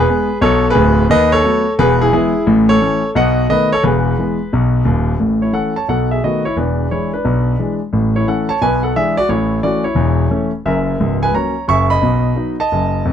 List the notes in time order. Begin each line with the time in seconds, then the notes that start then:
Already playing: B4
0.00 G#4
0.09 G#3 B3
0.41 B1 B2 A4 C#5
0.70 G#4 B4
0.75 D1 D2
1.10 D#2 D#3 B4 D#5
1.32 A4 C#5
1.44 F#3 A3 B3
1.79 E1 E2 G#4 B4
2.01 E4 G#4
2.13 E3 G#3 B3 E4 G#4
2.47 A1 A2
2.69 A4 C#5
2.81 E3 A3 C#4
3.15 B1 B2 D#5 F#5
3.49 D#3 A3 B3 B4 D#5
3.72 A4 C#5
3.83 E1 E2 G#4 B4
4.19 E3 G#3 B3
4.53 B1 B2
4.85 D#1 D#2
5.20 A1 A2
5.42 E4 C#5
5.53 E3 A3 C#4 A4 F#5
5.76 C#5 A5
5.88 B1 B2 A4 F#5
6.11 G#4 E5
6.24 D#3 A3 B3 F#4 D#5
6.45 E4 C#5
6.56 E1 E2 D4 B4
6.91 E3 G#3 D4 E4 C#5
7.13 D4 B4
7.24 B1 B2
7.59 E3 G#3 D4
7.93 A1 A2
8.16 E4 C#5
8.28 E3 A3 C#4 A4 F#5
8.49 C#5 A5
8.61 B1 B2 B4 G#5
8.83 A4 F#5
8.96 E3 G#3 D4 G#4 E5
9.17 F#4 D5
9.29 A1 A2 E4 C#5
9.63 E3 A3 C#4 F#4 D5
9.84 E4 C#5
9.95 E1 E2
10.30 E3 A3 C#4
10.66 F#1 F#2 A#4 E5
11.00 C#1 C#2
11.23 B4 G#5
11.34 F#3 A#3 C#4 C#5 A#5
11.68 F#1 F#2 E5 C#6
11.90 D#5 B5
12.02 B1 B2
12.35 F#3 B3 D#4
12.60 D#5 A5
12.72 F#1 F#2
13.05 F1 F2